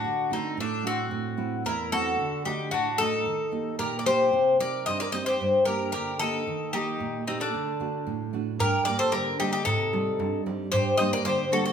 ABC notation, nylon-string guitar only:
X:1
M:2/4
L:1/8
Q:1/4=112
K:none
V:1 name="Nylon-string guitar"
D, [A,D^F] A,, [A,DF] | A,, [A,CE] E,, [A,CE] | D, [A,D^F] A,, [A,DF] | _E, [_B,_EG] _B,, [B,EG] |
C, [C_EG] G,, [CEG] | G,, [_B,DG] D, [B,DG] | _E, [_B,_EG] _B,, [B,EG] | D, [A,D^F] A,, [A,DF] |
G,, [G,_B,D] D, [G,B,D] | C, [G,C_E] G,, [G,CE] | G,, [G,_B,D] D, [G,B,D] |]